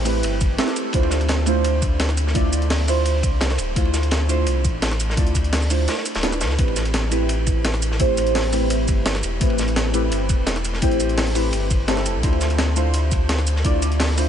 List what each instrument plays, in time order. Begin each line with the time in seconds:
Already playing: sub bass A1, synth stab A3 C4 E4 G4 B4 C5
0.05 synth stab A3 C4 E4 G4 B4, snare, open hi-hat, ride, shaker
0.23 sub bass G1, closed hi-hat, ride
0.41 kick, closed hi-hat, ride, shaker
0.58 synth stab A3 C4 E4 G4 A4, snare, closed hi-hat, ride
0.67 snare
0.76 closed hi-hat, ride, shaker
0.93 sub bass D2, synth stab A3 D4 E4 F4 C5, kick, closed hi-hat, ride
1.03 ride
1.11 snare, closed hi-hat, ride, shaker
1.20 closed hi-hat, ride
1.28 snare, closed hi-hat, ride
1.46 synth stab A3 D4 E4 F4 C5, closed hi-hat, ride, shaker
1.65 closed hi-hat, ride
1.82 kick, closed hi-hat, ride, shaker
2.00 snare, closed hi-hat, ride
2.09 snare, ride
2.17 closed hi-hat, ride, shaker
2.27 snare
2.34 sub bass D2, synth stab A3 D4 E4 F4 D5, kick, closed hi-hat, ride
2.53 closed hi-hat, ride, shaker
2.62 closed hi-hat
2.70 snare, closed hi-hat, open hi-hat
2.87 synth stab A3 D4 E4 F4 C5, snare, open hi-hat, ride, shaker
3.05 closed hi-hat, ride
3.23 sub bass C2, kick, closed hi-hat, ride, shaker
3.41 snare, closed hi-hat, ride
3.50 snare
3.58 sub bass D1, closed hi-hat, ride, shaker
3.75 sub bass D2, synth stab A3 D4 E4 F4 C5, kick, closed hi-hat, ride
3.85 ride
3.94 snare, closed hi-hat, ride, shaker
4.03 closed hi-hat, ride
4.11 snare, closed hi-hat, ride
4.28 synth stab A3 D4 E4 F4 C5, closed hi-hat, ride, shaker
4.46 sub bass C2, closed hi-hat, ride
4.65 sub bass A1, kick, closed hi-hat, ride, shaker
4.82 snare, closed hi-hat, ride
4.91 snare, ride
5.00 closed hi-hat, ride, shaker
5.10 snare
5.16 sub bass D2, synth stab A3 D4 E4 F4 D5, kick, closed hi-hat, ride
5.27 closed hi-hat
5.35 kick, closed hi-hat, ride, shaker
5.44 closed hi-hat
5.53 snare, closed hi-hat, open hi-hat
5.62 shaker
5.70 synth stab A3 D4 E4 F4 C5, snare, open hi-hat, ride, shaker
5.88 snare, closed hi-hat, ride
5.97 snare
6.06 closed hi-hat, ride, shaker
6.15 sub bass D1, snare, closed hi-hat, ride
6.23 synth stab A3 D4 E4 F4 B4, snare, closed hi-hat
6.32 snare, ride, shaker
6.41 sub bass D2, snare, closed hi-hat, ride, shaker
6.50 snare
6.58 sub bass A1, synth stab A3 C4 E4 G4 B4, kick, closed hi-hat, ride
6.68 ride
6.76 snare, closed hi-hat, ride, shaker
6.85 closed hi-hat, ride
6.94 snare, closed hi-hat, ride
7.10 synth stab A3 C4 E4 G4 B4, closed hi-hat, ride, shaker
7.29 closed hi-hat, ride
7.47 kick, closed hi-hat, ride, shaker
7.65 snare, closed hi-hat, ride
7.74 snare, ride
7.82 closed hi-hat, ride, shaker
7.91 snare
7.99 sub bass A1, synth stab A3 C4 E4 G4 C5, kick, closed hi-hat, ride
8.17 closed hi-hat, ride, shaker
8.27 closed hi-hat
8.35 snare, closed hi-hat, open hi-hat
8.52 synth stab A3 C4 E4 G4 B4, snare, open hi-hat, ride, shaker
8.70 closed hi-hat, ride
8.88 sub bass G1, kick, closed hi-hat, ride, shaker
9.06 snare, closed hi-hat, ride
9.15 snare
9.23 sub bass E1, closed hi-hat, ride, shaker
9.40 sub bass A1, synth stab A3 C4 E4 G4 B4, kick, closed hi-hat, ride
9.50 ride
9.58 snare, closed hi-hat, ride, shaker
9.68 closed hi-hat, ride
9.76 snare, closed hi-hat, ride
9.93 synth stab A3 C4 E4 G4 B4, closed hi-hat, ride, shaker
10.12 sub bass G1, closed hi-hat, ride
10.29 sub bass E1, kick, closed hi-hat, ride, shaker
10.47 snare, closed hi-hat, ride
10.56 snare, ride
10.65 closed hi-hat, ride, shaker
10.73 snare
10.81 sub bass A1, synth stab A3 C4 E4 G4 C5, kick, closed hi-hat, ride
10.91 closed hi-hat
11.00 closed hi-hat, ride, shaker
11.09 closed hi-hat
11.18 snare, closed hi-hat, open hi-hat
11.27 closed hi-hat
11.34 synth stab A3 C4 E4 G4 B4, snare, open hi-hat, ride, shaker
11.53 sub bass G1, closed hi-hat, ride
11.70 kick, closed hi-hat, ride, shaker
11.87 synth stab A3 C4 E4 G4 A4, snare, closed hi-hat, ride
11.97 snare
12.06 sub bass E1, closed hi-hat, ride, shaker
12.15 sub bass C2
12.22 sub bass D2, synth stab A3 D4 E4 F4 C5, kick, closed hi-hat, ride
12.33 ride
12.41 snare, closed hi-hat, ride, shaker
12.50 closed hi-hat, ride
12.58 snare, closed hi-hat, ride
12.75 synth stab A3 D4 E4 F4 C5, closed hi-hat, ride, shaker
12.94 closed hi-hat, ride
13.11 kick, closed hi-hat, ride, shaker
13.29 snare, closed hi-hat, ride
13.38 snare, ride
13.47 closed hi-hat, ride, shaker
13.56 snare
13.64 sub bass D2, synth stab A3 D4 E4 F4 D5, kick, closed hi-hat, ride
13.82 closed hi-hat, ride, shaker
13.92 closed hi-hat
14.00 snare, closed hi-hat, open hi-hat
14.17 synth stab A3 D4 E4 F4 C5, snare, open hi-hat, ride, shaker